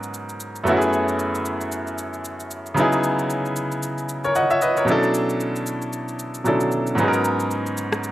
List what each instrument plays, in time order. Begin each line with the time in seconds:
Already playing: grand piano G#2 F#3 B3 C#4 D#4 A#4
0.03 shaker
0.14 shaker
0.29 shaker
0.40 shaker
0.56 shaker
0.64 grand piano F#2 A3 B3, shaker
0.68 grand piano C#4 E4 F#4
0.77 grand piano G#4
0.82 shaker
0.93 shaker
1.08 shaker
1.19 shaker
1.35 shaker
1.45 shaker
1.61 shaker
1.72 shaker
1.87 shaker
1.98 shaker
2.13 shaker
2.25 shaker
2.40 shaker
2.51 shaker
2.66 shaker
2.74 grand piano C#3 F#3 B3, shaker
2.78 grand piano D#4 E4 G#4
2.92 shaker
3.04 shaker
3.19 shaker
3.30 shaker
3.45 shaker
3.56 shaker
3.72 shaker
3.83 shaker
3.98 shaker
4.09 shaker
4.24 grand piano A#4 C#5, shaker
4.35 grand piano D#5 F#5, shaker
4.50 grand piano C#5 E5, shaker
4.62 grand piano B4 D#5, shaker
4.77 grand piano A#4 C#5, shaker
4.85 grand piano B2 F#3 C#4, shaker
4.89 grand piano D4 E4 A4
5.03 shaker
5.14 shaker
5.29 shaker
5.40 shaker
5.56 shaker
5.66 shaker
5.82 shaker
5.93 shaker
6.08 shaker
6.19 shaker
6.34 shaker
6.44 grand piano B2 F#3 C#4 D4 E4 A4, shaker
6.61 shaker
6.72 shaker
6.87 shaker
6.95 grand piano G#2 F#3 B3, shaker
6.99 grand piano C#4 D#4 G#4
7.08 grand piano A#4
7.13 shaker
7.24 shaker
7.40 shaker
7.51 shaker
7.66 shaker
7.77 shaker
7.92 cross-stick, shaker
8.03 shaker